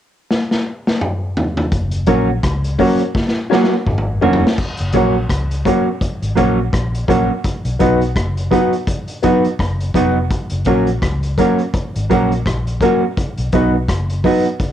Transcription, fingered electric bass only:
1.72 2.06 F#1 loud
2.08 2.41 A#1 medium
2.44 2.77 C#2 medium
3.88 4.21 G#1 medium
4.24 4.42 F1 medium
4.80 4.93 F#1 medium
4.94 5.28 A#1 medium
5.30 5.63 C#2 medium
6.22 6.36 G#1 medium
6.39 6.71 A#1 medium
6.73 7.06 A#1 medium
7.09 7.28 A#1 medium
7.65 7.79 B1 medium
7.81 8.14 B1 medium
8.16 8.50 F#1 medium
9.60 9.93 F#1 medium
9.95 10.28 F1 medium
10.52 10.65 F#1 medium
10.67 11.00 A#1 medium
11.02 11.36 C#2 medium
11.96 12.09 G#1 medium
12.11 12.44 A#1 medium
12.47 12.80 A#1 medium
13.38 13.52 B1 medium
13.54 13.87 B1 medium
13.89 14.22 F#1 medium

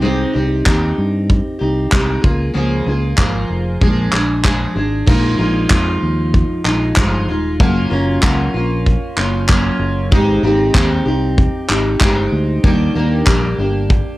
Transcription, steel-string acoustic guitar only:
0.01 0.34 C3 medium
0.01 0.34 G#3 loud
0.01 0.34 C4 medium
0.01 0.34 D#4 medium
0.01 0.32 G4 medium
0.33 0.64 C4 soft
0.33 0.65 D#4 medium
0.33 0.66 G4 medium
0.66 1.60 C4 medium
0.66 1.59 D#4 medium
0.66 1.58 G4 medium
1.59 1.91 C4 soft
1.59 1.91 D#4 soft
1.59 1.92 G4 soft
1.91 2.23 G#3 medium
1.91 2.24 C4 medium
1.91 2.23 D#4 medium
1.91 2.21 G4 medium
2.22 2.53 A#3 soft
2.22 2.54 F4 soft
2.22 2.54 G#4 medium
2.54 2.86 C#3 medium
2.54 2.86 F3 medium
2.54 2.87 A#3 medium
2.54 2.87 F4 medium
2.54 2.85 G#4 medium
2.87 3.18 A#3 soft
2.87 3.18 F4 soft
2.87 3.18 G#4 soft
3.18 3.81 F3 medium
3.18 3.82 A#3 medium
3.18 3.82 F4 medium
3.18 3.82 G#4 medium
3.81 4.13 A#2 medium
3.81 4.13 F3 medium
3.81 4.14 G#3 medium
3.81 4.13 D4 medium
3.81 4.12 G#4 medium
4.13 4.44 G#3 soft
4.13 4.44 D4 soft
4.13 4.45 G#4 medium
4.44 4.76 F3 medium
4.44 4.76 G#3 medium
4.44 4.75 D4 medium
4.44 4.74 G#4 medium
4.76 5.06 G#3 soft
4.76 5.07 D4 soft
4.76 5.07 G#4 soft
5.06 5.39 A#2 medium
5.06 5.39 F3 medium
5.06 5.39 G#3 medium
5.06 5.38 D#4 medium
5.06 5.37 F4 medium
5.38 5.72 A#2 medium
5.38 5.69 F3 medium
5.38 5.70 G#3 medium
5.38 5.71 D#4 medium
5.38 5.70 F4 medium
5.70 6.69 F3 medium
5.70 6.66 G#3 medium
5.70 6.65 D#4 medium
5.70 6.65 F4 medium
6.65 6.96 G#3 soft
6.65 6.97 D#4 soft
6.65 6.97 F4 medium
6.96 7.28 F3 medium
6.96 7.29 G#3 medium
6.96 7.29 D#4 medium
6.96 7.27 F4 medium
7.28 7.60 G#3 soft
7.28 7.60 D#4 soft
7.28 7.60 F4 medium
7.60 7.91 F#3 medium
7.60 7.90 A#3 medium
7.60 7.90 C#4 loud
7.60 7.89 F4 loud
7.90 8.20 F#3 medium
7.90 8.21 A#3 medium
7.90 8.22 C#4 medium
7.90 8.22 F4 medium
8.21 8.54 F#3 medium
8.21 8.54 A#3 medium
8.21 8.54 C#4 medium
8.21 8.53 F4 medium
8.54 9.18 A#3 soft
8.54 9.18 C#4 medium
8.54 9.16 F4 medium
9.17 9.48 A#3 soft
9.17 9.48 C#4 medium
9.17 9.49 F4 medium
9.49 10.11 F#3 medium
9.49 10.12 A#3 medium
9.49 10.12 C#4 medium
9.49 10.12 F4 medium
10.11 10.43 G#3 medium
10.11 10.43 C4 medium
10.11 10.43 D#4 loud
10.11 10.42 G4 loud
10.43 10.74 G#3 medium
10.43 10.75 C4 medium
10.43 10.75 D#4 medium
10.43 10.75 G4 medium
10.75 11.06 G#3 medium
10.75 11.07 C4 medium
10.75 11.06 D#4 medium
10.75 11.04 G4 medium
11.06 11.70 C4 soft
11.06 11.69 D#4 soft
11.06 11.68 G4 medium
11.68 12.00 C4 soft
11.68 12.01 D#4 soft
11.68 12.00 G4 medium
12.01 12.63 G#3 medium
12.01 12.64 C4 medium
12.01 12.64 D#4 medium
12.01 12.65 G4 medium
12.64 12.95 D#3 medium
12.64 12.95 G3 medium
12.64 12.95 A#3 loud
12.64 12.95 D4 medium
12.64 12.94 G4 loud
12.95 13.28 D#3 medium
12.95 13.25 G3 medium
12.95 13.26 A#3 medium
12.95 13.26 D4 medium
12.95 13.27 G4 medium
13.26 13.58 G3 medium
13.26 13.58 A#3 medium
13.26 13.58 D4 medium
13.26 13.57 G4 medium
13.58 14.18 A#3 soft
13.58 14.18 D4 soft
13.58 14.18 G4 soft

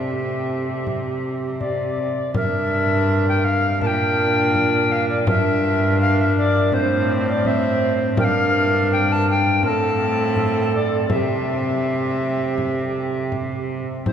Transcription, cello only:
0.00 2.11 C3 medium
2.36 3.78 G2 medium
3.82 5.29 A#2 medium
5.27 6.74 G2 medium
6.73 8.17 A2 medium
8.18 9.65 G2 medium
9.63 11.10 A2 medium
11.11 13.82 C3 medium
14.06 14.13 C3 medium

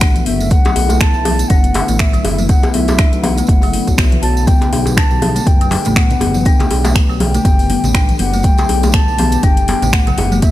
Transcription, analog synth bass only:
0.00 0.20 A1 medium
0.26 0.57 F#1 medium
0.76 1.07 B1 loud
1.15 1.44 B1 medium
1.50 1.81 F#1 medium
1.89 2.18 A1 medium
2.24 2.55 F#1 medium
2.74 3.05 B1 loud
3.13 3.42 B1 medium
3.49 3.79 F#1 medium
3.88 4.17 B1 loud
4.23 4.53 B1 medium
4.72 5.03 B1 loud
5.11 5.40 B1 medium
5.47 5.77 F#1 medium
5.85 6.15 A1 medium
6.21 6.52 F#1 medium
6.71 7.01 B1 loud
7.09 7.39 B1 medium
7.45 7.76 F#1 medium
7.83 8.13 A1 medium
8.19 8.50 F#1 medium
8.69 9.00 B1 loud
9.08 9.37 B1 medium
9.43 9.74 F#1 medium
9.82 10.12 A1 medium
10.18 10.49 F#1 medium

